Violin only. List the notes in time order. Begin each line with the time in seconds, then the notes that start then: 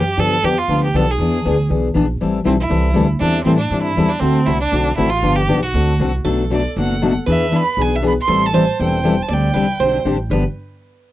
Already playing: G4
0.19 A4
0.45 G4
0.58 F4
0.84 G4
0.96 A4
1.11 G#4
2.46 C4
2.60 E4
3.20 D4
3.44 C4
3.57 D4
3.82 E4
4.09 D4
4.19 C4
4.46 E4
4.60 D4
4.97 E4
5.10 F4
5.36 G4
5.62 F#4
6.54 D5
6.79 F#5
7.30 E5
7.56 B5
7.82 G#5
7.96 E5
8.07 B5
8.22 C6
8.46 A5
8.82 G5
9.22 A5
9.34 G5